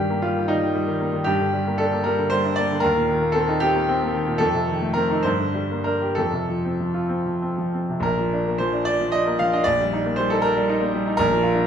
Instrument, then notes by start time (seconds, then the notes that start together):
grand piano
Already playing: G2 D#3 G3 G4
0.10 A#3
0.22 G3 F4
0.37 D#3
0.48 G3 D#4
0.62 D#3
0.75 G3
0.88 D#3
1.00 A#3
1.13 D#3
1.24 G2 G4
1.40 D3
1.53 G3
1.67 A#3
1.78 D4 A4
1.93 A#3
2.04 G3 A#4
2.18 D3
2.30 G3 C5
2.45 D4
2.56 A#3 D5
2.71 D3
2.80 D#2 A#4
2.96 A#2
3.09 D#3
3.22 A#3
3.32 C4 A4
3.48 D#4
3.60 C4 G4
3.75 A#3
3.89 C4
4.02 A#3
4.14 D#3
4.27 A#2
4.38 F2 A4
4.54 C3
4.68 D#3
4.81 A3
4.93 C4 A#4
5.11 D#4
5.23 G2 C5
5.39 D3
5.54 G3
5.71 A#3
5.84 D4 A#4
6.02 G4
6.15 F2 A4
6.32 C3
6.49 F3
6.65 C4
6.80 F3
6.94 F4
7.09 C4
7.26 F3
7.42 C4
7.58 F3
7.74 C4
7.89 C3
8.00 A#1 A#4
8.18 F3
8.33 D4
8.48 A#3
8.58 F3 C5
8.73 D4
8.85 D5
9.00 F3
9.12 D4 D#5
9.27 A#3
9.39 F3 F5
9.53 D4 D#5
9.64 A#1 D5
9.81 G3
9.93 D#4
10.06 A#3
10.16 G3 C5
10.30 D#4 A4
10.42 A#4
10.57 G3
10.69 D#4
10.80 A#3
10.94 G3
11.07 D#4
11.17 A#1 A#4
11.32 F3
11.43 F4
11.55 D4